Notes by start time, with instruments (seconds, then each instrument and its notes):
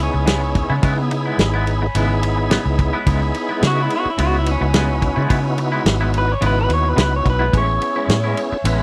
Already playing: tonewheel organ B3 D#4 E4 G#4, horn section C#5 G#5 B5
0.03 clean electric guitar C#4
0.13 fingered electric bass C#2, muted clean electric guitar stroke
0.26 clean electric guitar C#3 G#3 B3 E4, snare, ride
0.42 muted clean electric guitar stroke
0.55 muted clean electric guitar stroke, kick, ride
0.70 fingered electric bass C#3, clean electric guitar G#3 B3 E4
0.82 clean electric guitar C#3 G#3 B3 E4, fingered electric bass C#3, tonewheel organ B3 D#4 E4 G#4, kick, ride
1.11 muted clean electric guitar stroke, ride
1.26 clean electric guitar G#3 B3 E4
1.38 fingered electric bass G#1, muted clean electric guitar stroke, snare, ride
1.54 clean electric guitar G#3 B3 E4
1.67 ride
1.82 muted clean electric guitar stroke
1.95 fingered electric bass G#1, clean electric guitar C#3 G#3 B3 E4, tonewheel organ B3 D#4 E4 G#4, ride
2.23 muted clean electric guitar stroke, ride
2.38 muted clean electric guitar stroke
2.50 clean electric guitar C#3 G#3 B3 E4, snare, ride
2.66 fingered electric bass C#2, muted clean electric guitar stroke
2.79 muted clean electric guitar stroke, kick, ride
2.93 clean electric guitar G#3 B3 E4
3.06 fingered electric bass C#2, clean electric guitar C#3 G#3 B3 E4, tonewheel organ B3 D#4 E4 G#4, kick, ride
3.21 muted clean electric guitar stroke
3.34 muted clean electric guitar stroke, ride
3.49 clean electric guitar G#3 B3 E4
3.62 fingered electric bass C#3, muted clean electric guitar stroke, snare, ride
3.67 clean electric guitar F#4
3.77 clean electric guitar G#3 B3 E4
3.82 clean electric guitar E4
3.90 ride
3.96 clean electric guitar F#4
4.05 muted fingered electric bass stroke, muted clean electric guitar stroke
4.10 clean electric guitar E4
4.18 fingered electric bass C#2, clean electric guitar C#3 G#3 B3 E4, tonewheel organ B3 D#4 E4 F#4, ride
4.23 clean electric guitar F#4
4.38 clean electric guitar E4
4.46 muted clean electric guitar stroke, ride
4.51 clean electric guitar C#4
4.61 fingered electric bass C#2, muted clean electric guitar stroke
4.74 clean electric guitar C#3 G#3 B3 E4, snare, ride
4.89 muted clean electric guitar stroke
5.02 muted clean electric guitar stroke, kick, ride
5.16 fingered electric bass C#3, clean electric guitar G#3 B3 E4
5.29 clean electric guitar C#3 G#3 B3 E4, fingered electric bass C#3, tonewheel organ B3 D#4 E4 F#4, kick, ride
5.44 muted clean electric guitar stroke
5.58 muted clean electric guitar stroke, ride
5.72 clean electric guitar G#3 B3 E4
5.85 fingered electric bass G#1, muted clean electric guitar stroke, snare, ride
6.01 clean electric guitar G#3 B3 E4
6.14 ride
6.18 clean electric guitar B4
6.28 clean electric guitar C#5, muted clean electric guitar stroke
6.41 fingered electric bass G#1, clean electric guitar C#3 G#3 B3 E4, tonewheel organ B3 D#4 E4 F#4, ride
6.46 clean electric guitar B4
6.61 clean electric guitar B4
6.69 fingered electric bass D#2, muted clean electric guitar stroke, ride
6.74 clean electric guitar C#5
6.85 muted clean electric guitar stroke
6.89 clean electric guitar B4
6.96 fingered electric bass C#2, clean electric guitar C#3 G#3 B3 E4, snare, ride
7.01 clean electric guitar B4
7.12 muted clean electric guitar stroke
7.16 clean electric guitar C#5
7.25 fingered electric bass B1, muted clean electric guitar stroke, kick, ride
7.30 clean electric guitar B4
7.39 clean electric guitar G#3 B3 E4
7.52 fingered electric bass A1, clean electric guitar A2 G#3 C#4 E4, tonewheel organ B3 C#4 E4 G#4, horn section E5 G#5, kick, ride
7.58 clean electric guitar C#5
7.68 muted clean electric guitar stroke
7.81 muted clean electric guitar stroke, ride
7.96 clean electric guitar G#3 C#4 E4
8.09 fingered electric bass A2, muted clean electric guitar stroke, snare, ride
8.24 clean electric guitar G#3 C#4 E4
8.37 ride
8.52 muted fingered electric bass stroke, muted clean electric guitar stroke
8.64 fingered electric bass A1, clean electric guitar A2 G#3 C#4 E4, tonewheel organ B3 C#4 E4 B4, ride